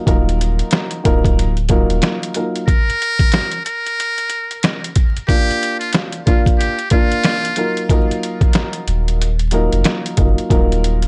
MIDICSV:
0, 0, Header, 1, 5, 480
1, 0, Start_track
1, 0, Tempo, 652174
1, 51, Time_signature, 4, 2, 24, 8
1, 8153, End_track
2, 0, Start_track
2, 0, Title_t, "Muted trumpet"
2, 0, Program_c, 0, 59
2, 1967, Note_on_c, 0, 70, 106
2, 2659, Note_off_c, 0, 70, 0
2, 2684, Note_on_c, 0, 70, 85
2, 3521, Note_off_c, 0, 70, 0
2, 3889, Note_on_c, 0, 67, 106
2, 4250, Note_off_c, 0, 67, 0
2, 4267, Note_on_c, 0, 65, 85
2, 4357, Note_off_c, 0, 65, 0
2, 4612, Note_on_c, 0, 65, 68
2, 4741, Note_off_c, 0, 65, 0
2, 4844, Note_on_c, 0, 67, 78
2, 5063, Note_off_c, 0, 67, 0
2, 5089, Note_on_c, 0, 65, 94
2, 5780, Note_off_c, 0, 65, 0
2, 8153, End_track
3, 0, Start_track
3, 0, Title_t, "Grand piano"
3, 0, Program_c, 1, 0
3, 44, Note_on_c, 1, 54, 88
3, 47, Note_on_c, 1, 58, 77
3, 51, Note_on_c, 1, 63, 81
3, 55, Note_on_c, 1, 65, 84
3, 58, Note_on_c, 1, 70, 99
3, 721, Note_off_c, 1, 54, 0
3, 722, Note_off_c, 1, 58, 0
3, 724, Note_off_c, 1, 63, 0
3, 727, Note_off_c, 1, 65, 0
3, 728, Note_off_c, 1, 70, 0
3, 762, Note_on_c, 1, 54, 82
3, 765, Note_on_c, 1, 58, 85
3, 768, Note_on_c, 1, 63, 88
3, 772, Note_on_c, 1, 65, 81
3, 775, Note_on_c, 1, 70, 105
3, 1115, Note_off_c, 1, 54, 0
3, 1117, Note_off_c, 1, 58, 0
3, 1118, Note_off_c, 1, 63, 0
3, 1120, Note_off_c, 1, 65, 0
3, 1122, Note_off_c, 1, 70, 0
3, 1243, Note_on_c, 1, 54, 98
3, 1246, Note_on_c, 1, 58, 80
3, 1250, Note_on_c, 1, 63, 86
3, 1253, Note_on_c, 1, 65, 89
3, 1256, Note_on_c, 1, 70, 100
3, 1696, Note_off_c, 1, 54, 0
3, 1698, Note_off_c, 1, 58, 0
3, 1699, Note_off_c, 1, 63, 0
3, 1701, Note_off_c, 1, 65, 0
3, 1703, Note_off_c, 1, 70, 0
3, 1728, Note_on_c, 1, 54, 77
3, 1732, Note_on_c, 1, 58, 70
3, 1735, Note_on_c, 1, 63, 66
3, 1739, Note_on_c, 1, 65, 64
3, 1742, Note_on_c, 1, 70, 85
3, 1954, Note_off_c, 1, 54, 0
3, 1956, Note_off_c, 1, 58, 0
3, 1957, Note_off_c, 1, 63, 0
3, 1959, Note_off_c, 1, 65, 0
3, 1961, Note_off_c, 1, 70, 0
3, 3884, Note_on_c, 1, 58, 85
3, 3891, Note_on_c, 1, 62, 84
3, 3898, Note_on_c, 1, 65, 99
3, 4561, Note_off_c, 1, 58, 0
3, 4564, Note_off_c, 1, 62, 0
3, 4568, Note_off_c, 1, 65, 0
3, 4606, Note_on_c, 1, 58, 83
3, 4613, Note_on_c, 1, 62, 84
3, 4620, Note_on_c, 1, 65, 104
3, 4957, Note_off_c, 1, 58, 0
3, 4961, Note_off_c, 1, 62, 0
3, 4964, Note_off_c, 1, 65, 0
3, 5083, Note_on_c, 1, 58, 99
3, 5090, Note_on_c, 1, 62, 84
3, 5098, Note_on_c, 1, 65, 100
3, 5536, Note_off_c, 1, 58, 0
3, 5540, Note_off_c, 1, 62, 0
3, 5543, Note_off_c, 1, 65, 0
3, 5567, Note_on_c, 1, 54, 77
3, 5569, Note_on_c, 1, 58, 72
3, 5573, Note_on_c, 1, 63, 66
3, 5577, Note_on_c, 1, 65, 69
3, 5581, Note_on_c, 1, 70, 87
3, 5793, Note_off_c, 1, 54, 0
3, 5794, Note_off_c, 1, 58, 0
3, 5796, Note_off_c, 1, 63, 0
3, 5798, Note_off_c, 1, 65, 0
3, 5800, Note_off_c, 1, 70, 0
3, 5806, Note_on_c, 1, 54, 88
3, 5810, Note_on_c, 1, 58, 84
3, 5813, Note_on_c, 1, 63, 85
3, 5817, Note_on_c, 1, 65, 83
3, 5821, Note_on_c, 1, 70, 104
3, 6809, Note_off_c, 1, 54, 0
3, 6810, Note_off_c, 1, 58, 0
3, 6812, Note_off_c, 1, 63, 0
3, 6814, Note_off_c, 1, 65, 0
3, 6816, Note_off_c, 1, 70, 0
3, 7006, Note_on_c, 1, 54, 92
3, 7010, Note_on_c, 1, 58, 83
3, 7013, Note_on_c, 1, 63, 89
3, 7016, Note_on_c, 1, 65, 81
3, 7020, Note_on_c, 1, 70, 97
3, 7457, Note_off_c, 1, 54, 0
3, 7459, Note_off_c, 1, 58, 0
3, 7461, Note_off_c, 1, 63, 0
3, 7462, Note_off_c, 1, 65, 0
3, 7464, Note_off_c, 1, 70, 0
3, 7482, Note_on_c, 1, 54, 77
3, 7485, Note_on_c, 1, 58, 66
3, 7489, Note_on_c, 1, 63, 74
3, 7493, Note_on_c, 1, 65, 67
3, 7496, Note_on_c, 1, 70, 83
3, 7711, Note_off_c, 1, 54, 0
3, 7712, Note_off_c, 1, 58, 0
3, 7714, Note_off_c, 1, 63, 0
3, 7716, Note_off_c, 1, 65, 0
3, 7718, Note_off_c, 1, 70, 0
3, 7725, Note_on_c, 1, 54, 92
3, 7729, Note_on_c, 1, 58, 82
3, 7732, Note_on_c, 1, 63, 84
3, 7736, Note_on_c, 1, 65, 83
3, 7739, Note_on_c, 1, 70, 99
3, 8153, Note_off_c, 1, 54, 0
3, 8153, Note_off_c, 1, 58, 0
3, 8153, Note_off_c, 1, 63, 0
3, 8153, Note_off_c, 1, 65, 0
3, 8153, Note_off_c, 1, 70, 0
3, 8153, End_track
4, 0, Start_track
4, 0, Title_t, "Sub bass"
4, 0, Program_c, 2, 38
4, 52, Note_on_c, 2, 27, 107
4, 453, Note_off_c, 2, 27, 0
4, 775, Note_on_c, 2, 26, 96
4, 1367, Note_off_c, 2, 26, 0
4, 1395, Note_on_c, 2, 27, 102
4, 1475, Note_off_c, 2, 27, 0
4, 6531, Note_on_c, 2, 27, 96
4, 7125, Note_off_c, 2, 27, 0
4, 7155, Note_on_c, 2, 29, 83
4, 7235, Note_off_c, 2, 29, 0
4, 7492, Note_on_c, 2, 30, 96
4, 7611, Note_off_c, 2, 30, 0
4, 7731, Note_on_c, 2, 27, 106
4, 8133, Note_off_c, 2, 27, 0
4, 8153, End_track
5, 0, Start_track
5, 0, Title_t, "Drums"
5, 51, Note_on_c, 9, 36, 116
5, 56, Note_on_c, 9, 42, 84
5, 125, Note_off_c, 9, 36, 0
5, 129, Note_off_c, 9, 42, 0
5, 212, Note_on_c, 9, 42, 55
5, 286, Note_off_c, 9, 42, 0
5, 302, Note_on_c, 9, 42, 72
5, 376, Note_off_c, 9, 42, 0
5, 436, Note_on_c, 9, 42, 47
5, 509, Note_off_c, 9, 42, 0
5, 521, Note_on_c, 9, 42, 98
5, 535, Note_on_c, 9, 38, 113
5, 539, Note_on_c, 9, 40, 91
5, 595, Note_off_c, 9, 42, 0
5, 608, Note_off_c, 9, 38, 0
5, 613, Note_off_c, 9, 40, 0
5, 668, Note_on_c, 9, 42, 54
5, 741, Note_off_c, 9, 42, 0
5, 774, Note_on_c, 9, 36, 99
5, 774, Note_on_c, 9, 42, 76
5, 847, Note_off_c, 9, 42, 0
5, 848, Note_off_c, 9, 36, 0
5, 917, Note_on_c, 9, 36, 94
5, 923, Note_on_c, 9, 42, 54
5, 990, Note_off_c, 9, 36, 0
5, 997, Note_off_c, 9, 42, 0
5, 1023, Note_on_c, 9, 42, 93
5, 1097, Note_off_c, 9, 42, 0
5, 1154, Note_on_c, 9, 42, 42
5, 1228, Note_off_c, 9, 42, 0
5, 1241, Note_on_c, 9, 42, 78
5, 1248, Note_on_c, 9, 36, 88
5, 1315, Note_off_c, 9, 42, 0
5, 1322, Note_off_c, 9, 36, 0
5, 1399, Note_on_c, 9, 42, 49
5, 1472, Note_off_c, 9, 42, 0
5, 1485, Note_on_c, 9, 42, 94
5, 1493, Note_on_c, 9, 38, 115
5, 1497, Note_on_c, 9, 40, 90
5, 1559, Note_off_c, 9, 42, 0
5, 1567, Note_off_c, 9, 38, 0
5, 1571, Note_off_c, 9, 40, 0
5, 1643, Note_on_c, 9, 42, 58
5, 1716, Note_off_c, 9, 42, 0
5, 1725, Note_on_c, 9, 42, 86
5, 1799, Note_off_c, 9, 42, 0
5, 1881, Note_on_c, 9, 42, 44
5, 1954, Note_off_c, 9, 42, 0
5, 1971, Note_on_c, 9, 36, 115
5, 1975, Note_on_c, 9, 42, 85
5, 2044, Note_off_c, 9, 36, 0
5, 2049, Note_off_c, 9, 42, 0
5, 2132, Note_on_c, 9, 42, 56
5, 2206, Note_off_c, 9, 42, 0
5, 2221, Note_on_c, 9, 42, 73
5, 2295, Note_off_c, 9, 42, 0
5, 2351, Note_on_c, 9, 36, 97
5, 2354, Note_on_c, 9, 42, 47
5, 2425, Note_off_c, 9, 36, 0
5, 2428, Note_off_c, 9, 42, 0
5, 2442, Note_on_c, 9, 42, 97
5, 2455, Note_on_c, 9, 38, 109
5, 2460, Note_on_c, 9, 40, 89
5, 2516, Note_off_c, 9, 42, 0
5, 2529, Note_off_c, 9, 38, 0
5, 2534, Note_off_c, 9, 40, 0
5, 2587, Note_on_c, 9, 42, 55
5, 2661, Note_off_c, 9, 42, 0
5, 2693, Note_on_c, 9, 42, 75
5, 2767, Note_off_c, 9, 42, 0
5, 2845, Note_on_c, 9, 42, 54
5, 2918, Note_off_c, 9, 42, 0
5, 2943, Note_on_c, 9, 42, 95
5, 3017, Note_off_c, 9, 42, 0
5, 3076, Note_on_c, 9, 42, 43
5, 3149, Note_off_c, 9, 42, 0
5, 3162, Note_on_c, 9, 42, 77
5, 3235, Note_off_c, 9, 42, 0
5, 3318, Note_on_c, 9, 42, 48
5, 3392, Note_off_c, 9, 42, 0
5, 3407, Note_on_c, 9, 42, 92
5, 3415, Note_on_c, 9, 38, 113
5, 3419, Note_on_c, 9, 40, 94
5, 3481, Note_off_c, 9, 42, 0
5, 3488, Note_off_c, 9, 38, 0
5, 3493, Note_off_c, 9, 40, 0
5, 3565, Note_on_c, 9, 42, 60
5, 3638, Note_off_c, 9, 42, 0
5, 3647, Note_on_c, 9, 42, 88
5, 3651, Note_on_c, 9, 36, 82
5, 3721, Note_off_c, 9, 42, 0
5, 3725, Note_off_c, 9, 36, 0
5, 3802, Note_on_c, 9, 42, 45
5, 3876, Note_off_c, 9, 42, 0
5, 3891, Note_on_c, 9, 36, 113
5, 3897, Note_on_c, 9, 42, 85
5, 3965, Note_off_c, 9, 36, 0
5, 3971, Note_off_c, 9, 42, 0
5, 4053, Note_on_c, 9, 42, 54
5, 4127, Note_off_c, 9, 42, 0
5, 4143, Note_on_c, 9, 42, 73
5, 4216, Note_off_c, 9, 42, 0
5, 4275, Note_on_c, 9, 42, 47
5, 4349, Note_off_c, 9, 42, 0
5, 4362, Note_on_c, 9, 42, 100
5, 4375, Note_on_c, 9, 38, 116
5, 4380, Note_on_c, 9, 40, 89
5, 4435, Note_off_c, 9, 42, 0
5, 4449, Note_off_c, 9, 38, 0
5, 4453, Note_off_c, 9, 40, 0
5, 4508, Note_on_c, 9, 42, 57
5, 4581, Note_off_c, 9, 42, 0
5, 4613, Note_on_c, 9, 42, 75
5, 4615, Note_on_c, 9, 36, 99
5, 4687, Note_off_c, 9, 42, 0
5, 4688, Note_off_c, 9, 36, 0
5, 4757, Note_on_c, 9, 36, 94
5, 4763, Note_on_c, 9, 42, 54
5, 4830, Note_off_c, 9, 36, 0
5, 4837, Note_off_c, 9, 42, 0
5, 4862, Note_on_c, 9, 42, 95
5, 4935, Note_off_c, 9, 42, 0
5, 4994, Note_on_c, 9, 42, 42
5, 5068, Note_off_c, 9, 42, 0
5, 5080, Note_on_c, 9, 42, 78
5, 5088, Note_on_c, 9, 36, 87
5, 5154, Note_off_c, 9, 42, 0
5, 5162, Note_off_c, 9, 36, 0
5, 5237, Note_on_c, 9, 42, 50
5, 5311, Note_off_c, 9, 42, 0
5, 5325, Note_on_c, 9, 42, 90
5, 5333, Note_on_c, 9, 38, 118
5, 5337, Note_on_c, 9, 40, 91
5, 5399, Note_off_c, 9, 42, 0
5, 5406, Note_off_c, 9, 38, 0
5, 5411, Note_off_c, 9, 40, 0
5, 5482, Note_on_c, 9, 42, 59
5, 5555, Note_off_c, 9, 42, 0
5, 5564, Note_on_c, 9, 42, 85
5, 5638, Note_off_c, 9, 42, 0
5, 5719, Note_on_c, 9, 42, 43
5, 5792, Note_off_c, 9, 42, 0
5, 5811, Note_on_c, 9, 36, 113
5, 5814, Note_on_c, 9, 42, 88
5, 5884, Note_off_c, 9, 36, 0
5, 5888, Note_off_c, 9, 42, 0
5, 5971, Note_on_c, 9, 42, 58
5, 6045, Note_off_c, 9, 42, 0
5, 6059, Note_on_c, 9, 42, 72
5, 6133, Note_off_c, 9, 42, 0
5, 6190, Note_on_c, 9, 36, 96
5, 6192, Note_on_c, 9, 42, 46
5, 6264, Note_off_c, 9, 36, 0
5, 6265, Note_off_c, 9, 42, 0
5, 6280, Note_on_c, 9, 42, 98
5, 6293, Note_on_c, 9, 38, 115
5, 6298, Note_on_c, 9, 40, 90
5, 6354, Note_off_c, 9, 42, 0
5, 6367, Note_off_c, 9, 38, 0
5, 6372, Note_off_c, 9, 40, 0
5, 6426, Note_on_c, 9, 42, 58
5, 6500, Note_off_c, 9, 42, 0
5, 6533, Note_on_c, 9, 42, 80
5, 6606, Note_off_c, 9, 42, 0
5, 6684, Note_on_c, 9, 42, 54
5, 6757, Note_off_c, 9, 42, 0
5, 6782, Note_on_c, 9, 42, 95
5, 6856, Note_off_c, 9, 42, 0
5, 6914, Note_on_c, 9, 42, 44
5, 6988, Note_off_c, 9, 42, 0
5, 7001, Note_on_c, 9, 42, 80
5, 7074, Note_off_c, 9, 42, 0
5, 7157, Note_on_c, 9, 42, 50
5, 7231, Note_off_c, 9, 42, 0
5, 7245, Note_on_c, 9, 42, 93
5, 7252, Note_on_c, 9, 38, 115
5, 7257, Note_on_c, 9, 40, 95
5, 7318, Note_off_c, 9, 42, 0
5, 7326, Note_off_c, 9, 38, 0
5, 7330, Note_off_c, 9, 40, 0
5, 7403, Note_on_c, 9, 42, 60
5, 7476, Note_off_c, 9, 42, 0
5, 7486, Note_on_c, 9, 42, 86
5, 7491, Note_on_c, 9, 36, 84
5, 7559, Note_off_c, 9, 42, 0
5, 7564, Note_off_c, 9, 36, 0
5, 7642, Note_on_c, 9, 42, 44
5, 7715, Note_off_c, 9, 42, 0
5, 7731, Note_on_c, 9, 36, 117
5, 7734, Note_on_c, 9, 42, 86
5, 7805, Note_off_c, 9, 36, 0
5, 7808, Note_off_c, 9, 42, 0
5, 7891, Note_on_c, 9, 42, 56
5, 7964, Note_off_c, 9, 42, 0
5, 7980, Note_on_c, 9, 42, 74
5, 8054, Note_off_c, 9, 42, 0
5, 8114, Note_on_c, 9, 42, 47
5, 8153, Note_off_c, 9, 42, 0
5, 8153, End_track
0, 0, End_of_file